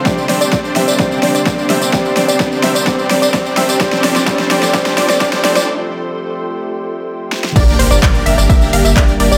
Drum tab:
CC |----------------|----------------|----------------|----------------|
RD |----------------|----------------|----------------|----------------|
HH |xxoxxxoxxxoxxxox|xxoxxxoxxxoxoxox|xxoxxxoxxxoxxxox|----------------|
TB |xx-xxx-xxx-xxx-x|xx-xxx-xxx-xxx-x|xx-xxx-xxx-xxx-x|----------------|
CP |----------------|----------------|----------------|----------------|
SD |o-o-o-o-o-o-o-o-|o-o-o-o-o-o-o-o-|oooooooooooooooo|--------------oo|
BD |o---o---o---o---|o---o---o---o---|o---o---o---o---|----------------|

CC |x---------------|
RD |--x---x---x---x-|
HH |xxoxxxoxxxoxxxox|
TB |xx-xxx-xxx-xxx-x|
CP |----x-------x---|
SD |----------------|
BD |o---o---o---o---|